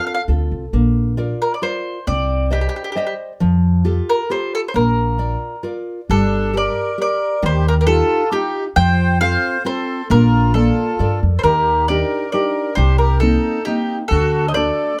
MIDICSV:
0, 0, Header, 1, 5, 480
1, 0, Start_track
1, 0, Key_signature, -2, "major"
1, 0, Tempo, 446097
1, 792, Time_signature, 3, 2, 24, 8
1, 6559, Key_signature, -2, "minor"
1, 16140, End_track
2, 0, Start_track
2, 0, Title_t, "Mandolin"
2, 0, Program_c, 0, 25
2, 71, Note_on_c, 0, 77, 49
2, 143, Note_off_c, 0, 77, 0
2, 156, Note_on_c, 0, 77, 63
2, 232, Note_off_c, 0, 77, 0
2, 1525, Note_on_c, 0, 70, 66
2, 1653, Note_off_c, 0, 70, 0
2, 1658, Note_on_c, 0, 74, 51
2, 1741, Note_off_c, 0, 74, 0
2, 1752, Note_on_c, 0, 72, 76
2, 2226, Note_off_c, 0, 72, 0
2, 2231, Note_on_c, 0, 74, 74
2, 2678, Note_off_c, 0, 74, 0
2, 2718, Note_on_c, 0, 67, 64
2, 2795, Note_off_c, 0, 67, 0
2, 2811, Note_on_c, 0, 67, 46
2, 2880, Note_off_c, 0, 67, 0
2, 2893, Note_on_c, 0, 67, 57
2, 2959, Note_off_c, 0, 67, 0
2, 2971, Note_on_c, 0, 67, 41
2, 3041, Note_off_c, 0, 67, 0
2, 3059, Note_on_c, 0, 67, 53
2, 3124, Note_off_c, 0, 67, 0
2, 3142, Note_on_c, 0, 67, 45
2, 3188, Note_off_c, 0, 67, 0
2, 3201, Note_on_c, 0, 67, 47
2, 3279, Note_off_c, 0, 67, 0
2, 3298, Note_on_c, 0, 67, 44
2, 3371, Note_off_c, 0, 67, 0
2, 4406, Note_on_c, 0, 70, 75
2, 4614, Note_off_c, 0, 70, 0
2, 4643, Note_on_c, 0, 72, 69
2, 4872, Note_off_c, 0, 72, 0
2, 4893, Note_on_c, 0, 69, 77
2, 4947, Note_off_c, 0, 69, 0
2, 5039, Note_on_c, 0, 72, 60
2, 5110, Note_off_c, 0, 72, 0
2, 5119, Note_on_c, 0, 70, 66
2, 6036, Note_off_c, 0, 70, 0
2, 6570, Note_on_c, 0, 69, 76
2, 7060, Note_off_c, 0, 69, 0
2, 7072, Note_on_c, 0, 74, 76
2, 7503, Note_off_c, 0, 74, 0
2, 7549, Note_on_c, 0, 74, 73
2, 7980, Note_off_c, 0, 74, 0
2, 8024, Note_on_c, 0, 72, 74
2, 8247, Note_off_c, 0, 72, 0
2, 8268, Note_on_c, 0, 70, 78
2, 8322, Note_off_c, 0, 70, 0
2, 8401, Note_on_c, 0, 70, 58
2, 8460, Note_off_c, 0, 70, 0
2, 8464, Note_on_c, 0, 69, 86
2, 8913, Note_off_c, 0, 69, 0
2, 8958, Note_on_c, 0, 67, 69
2, 9294, Note_off_c, 0, 67, 0
2, 9427, Note_on_c, 0, 79, 94
2, 9873, Note_off_c, 0, 79, 0
2, 9908, Note_on_c, 0, 77, 99
2, 10354, Note_off_c, 0, 77, 0
2, 10398, Note_on_c, 0, 72, 73
2, 10840, Note_off_c, 0, 72, 0
2, 10880, Note_on_c, 0, 70, 87
2, 11322, Note_off_c, 0, 70, 0
2, 11341, Note_on_c, 0, 69, 69
2, 12038, Note_off_c, 0, 69, 0
2, 12254, Note_on_c, 0, 72, 62
2, 12300, Note_off_c, 0, 72, 0
2, 12304, Note_on_c, 0, 70, 69
2, 12757, Note_off_c, 0, 70, 0
2, 12785, Note_on_c, 0, 74, 78
2, 13236, Note_off_c, 0, 74, 0
2, 13259, Note_on_c, 0, 74, 60
2, 13713, Note_off_c, 0, 74, 0
2, 13722, Note_on_c, 0, 72, 78
2, 13966, Note_off_c, 0, 72, 0
2, 13970, Note_on_c, 0, 70, 60
2, 14198, Note_off_c, 0, 70, 0
2, 14203, Note_on_c, 0, 69, 75
2, 14663, Note_off_c, 0, 69, 0
2, 14688, Note_on_c, 0, 67, 70
2, 15039, Note_off_c, 0, 67, 0
2, 15151, Note_on_c, 0, 69, 81
2, 15548, Note_off_c, 0, 69, 0
2, 15584, Note_on_c, 0, 75, 60
2, 15643, Note_off_c, 0, 75, 0
2, 15648, Note_on_c, 0, 74, 82
2, 16103, Note_off_c, 0, 74, 0
2, 16140, End_track
3, 0, Start_track
3, 0, Title_t, "Accordion"
3, 0, Program_c, 1, 21
3, 6565, Note_on_c, 1, 62, 65
3, 7009, Note_off_c, 1, 62, 0
3, 7049, Note_on_c, 1, 70, 64
3, 7490, Note_off_c, 1, 70, 0
3, 7535, Note_on_c, 1, 70, 59
3, 7973, Note_off_c, 1, 70, 0
3, 8025, Note_on_c, 1, 67, 65
3, 8247, Note_off_c, 1, 67, 0
3, 8263, Note_on_c, 1, 67, 63
3, 8330, Note_off_c, 1, 67, 0
3, 8393, Note_on_c, 1, 67, 51
3, 8464, Note_off_c, 1, 67, 0
3, 8485, Note_on_c, 1, 65, 64
3, 8925, Note_off_c, 1, 65, 0
3, 8962, Note_on_c, 1, 63, 66
3, 9297, Note_off_c, 1, 63, 0
3, 9444, Note_on_c, 1, 72, 85
3, 9882, Note_off_c, 1, 72, 0
3, 9922, Note_on_c, 1, 72, 81
3, 10362, Note_off_c, 1, 72, 0
3, 10413, Note_on_c, 1, 69, 65
3, 10848, Note_off_c, 1, 69, 0
3, 10902, Note_on_c, 1, 65, 70
3, 11333, Note_off_c, 1, 65, 0
3, 11376, Note_on_c, 1, 65, 58
3, 12055, Note_off_c, 1, 65, 0
3, 12237, Note_on_c, 1, 69, 43
3, 12303, Note_on_c, 1, 67, 59
3, 12306, Note_off_c, 1, 69, 0
3, 12756, Note_off_c, 1, 67, 0
3, 12786, Note_on_c, 1, 70, 65
3, 13237, Note_off_c, 1, 70, 0
3, 13253, Note_on_c, 1, 70, 58
3, 13710, Note_off_c, 1, 70, 0
3, 13724, Note_on_c, 1, 67, 64
3, 13957, Note_off_c, 1, 67, 0
3, 13973, Note_on_c, 1, 67, 73
3, 14200, Note_off_c, 1, 67, 0
3, 14201, Note_on_c, 1, 63, 65
3, 14661, Note_off_c, 1, 63, 0
3, 14677, Note_on_c, 1, 63, 60
3, 15034, Note_off_c, 1, 63, 0
3, 15170, Note_on_c, 1, 66, 70
3, 15558, Note_off_c, 1, 66, 0
3, 15612, Note_on_c, 1, 72, 52
3, 15640, Note_on_c, 1, 69, 66
3, 15672, Note_off_c, 1, 72, 0
3, 16099, Note_off_c, 1, 69, 0
3, 16140, End_track
4, 0, Start_track
4, 0, Title_t, "Nylon-string guitar"
4, 0, Program_c, 2, 24
4, 0, Note_on_c, 2, 60, 41
4, 0, Note_on_c, 2, 65, 38
4, 0, Note_on_c, 2, 69, 46
4, 204, Note_off_c, 2, 60, 0
4, 206, Note_off_c, 2, 65, 0
4, 207, Note_off_c, 2, 69, 0
4, 301, Note_on_c, 2, 60, 33
4, 304, Note_on_c, 2, 65, 30
4, 312, Note_on_c, 2, 69, 39
4, 690, Note_off_c, 2, 60, 0
4, 693, Note_off_c, 2, 65, 0
4, 695, Note_off_c, 2, 69, 0
4, 790, Note_on_c, 2, 58, 55
4, 1257, Note_off_c, 2, 58, 0
4, 1262, Note_on_c, 2, 65, 46
4, 1270, Note_on_c, 2, 70, 39
4, 1270, Note_on_c, 2, 74, 49
4, 1651, Note_off_c, 2, 65, 0
4, 1653, Note_off_c, 2, 70, 0
4, 1655, Note_off_c, 2, 74, 0
4, 1742, Note_on_c, 2, 65, 42
4, 1748, Note_on_c, 2, 70, 34
4, 1753, Note_on_c, 2, 74, 43
4, 2130, Note_off_c, 2, 65, 0
4, 2134, Note_off_c, 2, 70, 0
4, 2136, Note_off_c, 2, 74, 0
4, 2227, Note_on_c, 2, 60, 56
4, 2695, Note_off_c, 2, 60, 0
4, 2696, Note_on_c, 2, 72, 42
4, 2703, Note_on_c, 2, 74, 39
4, 2706, Note_on_c, 2, 75, 51
4, 3086, Note_off_c, 2, 72, 0
4, 3091, Note_off_c, 2, 74, 0
4, 3092, Note_off_c, 2, 75, 0
4, 3179, Note_on_c, 2, 72, 39
4, 3184, Note_on_c, 2, 74, 38
4, 3191, Note_on_c, 2, 75, 47
4, 3568, Note_off_c, 2, 72, 0
4, 3571, Note_off_c, 2, 74, 0
4, 3575, Note_off_c, 2, 75, 0
4, 3662, Note_on_c, 2, 53, 59
4, 4130, Note_off_c, 2, 53, 0
4, 4139, Note_on_c, 2, 65, 48
4, 4143, Note_on_c, 2, 67, 40
4, 4149, Note_on_c, 2, 69, 44
4, 4527, Note_off_c, 2, 65, 0
4, 4529, Note_off_c, 2, 67, 0
4, 4531, Note_off_c, 2, 69, 0
4, 4624, Note_on_c, 2, 65, 37
4, 4630, Note_on_c, 2, 67, 38
4, 4633, Note_on_c, 2, 69, 45
4, 5010, Note_off_c, 2, 65, 0
4, 5014, Note_off_c, 2, 67, 0
4, 5014, Note_off_c, 2, 69, 0
4, 5100, Note_on_c, 2, 58, 61
4, 5571, Note_off_c, 2, 58, 0
4, 5575, Note_on_c, 2, 65, 37
4, 5582, Note_on_c, 2, 70, 38
4, 5586, Note_on_c, 2, 74, 44
4, 5968, Note_off_c, 2, 65, 0
4, 5973, Note_off_c, 2, 70, 0
4, 5974, Note_off_c, 2, 74, 0
4, 6058, Note_on_c, 2, 65, 40
4, 6060, Note_on_c, 2, 70, 34
4, 6071, Note_on_c, 2, 74, 42
4, 6453, Note_off_c, 2, 65, 0
4, 6453, Note_off_c, 2, 70, 0
4, 6460, Note_off_c, 2, 74, 0
4, 6559, Note_on_c, 2, 55, 62
4, 7025, Note_off_c, 2, 55, 0
4, 7031, Note_on_c, 2, 67, 47
4, 7042, Note_on_c, 2, 70, 53
4, 7418, Note_off_c, 2, 67, 0
4, 7424, Note_off_c, 2, 70, 0
4, 7508, Note_on_c, 2, 67, 40
4, 7514, Note_on_c, 2, 70, 48
4, 7895, Note_off_c, 2, 67, 0
4, 7899, Note_off_c, 2, 70, 0
4, 7988, Note_on_c, 2, 51, 62
4, 8456, Note_off_c, 2, 51, 0
4, 8467, Note_on_c, 2, 63, 44
4, 8473, Note_on_c, 2, 65, 42
4, 8480, Note_on_c, 2, 67, 54
4, 8852, Note_off_c, 2, 63, 0
4, 8856, Note_off_c, 2, 65, 0
4, 8860, Note_off_c, 2, 67, 0
4, 8946, Note_on_c, 2, 63, 45
4, 8950, Note_on_c, 2, 65, 36
4, 8955, Note_on_c, 2, 67, 48
4, 9330, Note_off_c, 2, 63, 0
4, 9333, Note_off_c, 2, 65, 0
4, 9336, Note_off_c, 2, 67, 0
4, 9426, Note_on_c, 2, 53, 64
4, 9891, Note_off_c, 2, 53, 0
4, 9903, Note_on_c, 2, 60, 47
4, 9909, Note_on_c, 2, 65, 42
4, 9915, Note_on_c, 2, 69, 57
4, 10289, Note_off_c, 2, 60, 0
4, 10292, Note_off_c, 2, 65, 0
4, 10294, Note_off_c, 2, 69, 0
4, 10380, Note_on_c, 2, 60, 45
4, 10386, Note_on_c, 2, 65, 44
4, 10390, Note_on_c, 2, 69, 51
4, 10768, Note_off_c, 2, 60, 0
4, 10770, Note_off_c, 2, 65, 0
4, 10773, Note_off_c, 2, 69, 0
4, 10866, Note_on_c, 2, 58, 68
4, 11333, Note_off_c, 2, 58, 0
4, 11342, Note_on_c, 2, 69, 49
4, 11347, Note_on_c, 2, 58, 44
4, 11354, Note_on_c, 2, 74, 49
4, 11730, Note_off_c, 2, 69, 0
4, 11733, Note_off_c, 2, 58, 0
4, 11737, Note_off_c, 2, 74, 0
4, 11827, Note_on_c, 2, 69, 46
4, 11836, Note_on_c, 2, 70, 41
4, 11837, Note_on_c, 2, 74, 49
4, 12214, Note_off_c, 2, 69, 0
4, 12219, Note_off_c, 2, 74, 0
4, 12220, Note_off_c, 2, 70, 0
4, 12312, Note_on_c, 2, 51, 61
4, 12780, Note_off_c, 2, 51, 0
4, 12800, Note_on_c, 2, 62, 43
4, 12805, Note_on_c, 2, 63, 44
4, 12809, Note_on_c, 2, 67, 49
4, 13182, Note_off_c, 2, 62, 0
4, 13186, Note_off_c, 2, 63, 0
4, 13186, Note_off_c, 2, 67, 0
4, 13269, Note_on_c, 2, 62, 42
4, 13274, Note_on_c, 2, 63, 39
4, 13280, Note_on_c, 2, 67, 45
4, 13656, Note_off_c, 2, 62, 0
4, 13657, Note_off_c, 2, 63, 0
4, 13662, Note_off_c, 2, 67, 0
4, 13748, Note_on_c, 2, 48, 65
4, 14216, Note_off_c, 2, 48, 0
4, 14225, Note_on_c, 2, 58, 45
4, 14230, Note_on_c, 2, 60, 39
4, 14235, Note_on_c, 2, 63, 50
4, 14611, Note_off_c, 2, 58, 0
4, 14615, Note_off_c, 2, 60, 0
4, 14618, Note_off_c, 2, 63, 0
4, 14705, Note_on_c, 2, 58, 40
4, 14714, Note_on_c, 2, 60, 37
4, 14719, Note_on_c, 2, 63, 48
4, 15091, Note_off_c, 2, 58, 0
4, 15096, Note_off_c, 2, 60, 0
4, 15098, Note_off_c, 2, 63, 0
4, 15198, Note_on_c, 2, 50, 62
4, 15658, Note_off_c, 2, 50, 0
4, 15667, Note_on_c, 2, 57, 48
4, 15669, Note_on_c, 2, 62, 46
4, 15675, Note_on_c, 2, 66, 51
4, 16049, Note_off_c, 2, 62, 0
4, 16052, Note_off_c, 2, 57, 0
4, 16055, Note_off_c, 2, 66, 0
4, 16140, End_track
5, 0, Start_track
5, 0, Title_t, "Upright bass"
5, 0, Program_c, 3, 32
5, 302, Note_on_c, 3, 38, 69
5, 535, Note_off_c, 3, 38, 0
5, 554, Note_on_c, 3, 36, 64
5, 763, Note_off_c, 3, 36, 0
5, 785, Note_on_c, 3, 34, 77
5, 1412, Note_off_c, 3, 34, 0
5, 2236, Note_on_c, 3, 36, 78
5, 2859, Note_off_c, 3, 36, 0
5, 3674, Note_on_c, 3, 41, 86
5, 4295, Note_off_c, 3, 41, 0
5, 5117, Note_on_c, 3, 34, 78
5, 5742, Note_off_c, 3, 34, 0
5, 6558, Note_on_c, 3, 31, 84
5, 7182, Note_off_c, 3, 31, 0
5, 7993, Note_on_c, 3, 39, 108
5, 8615, Note_off_c, 3, 39, 0
5, 9432, Note_on_c, 3, 41, 96
5, 10054, Note_off_c, 3, 41, 0
5, 10872, Note_on_c, 3, 34, 108
5, 11496, Note_off_c, 3, 34, 0
5, 11830, Note_on_c, 3, 43, 76
5, 12060, Note_off_c, 3, 43, 0
5, 12082, Note_on_c, 3, 41, 69
5, 12288, Note_off_c, 3, 41, 0
5, 12306, Note_on_c, 3, 39, 89
5, 12934, Note_off_c, 3, 39, 0
5, 13742, Note_on_c, 3, 36, 97
5, 14369, Note_off_c, 3, 36, 0
5, 15182, Note_on_c, 3, 38, 95
5, 15807, Note_off_c, 3, 38, 0
5, 16140, End_track
0, 0, End_of_file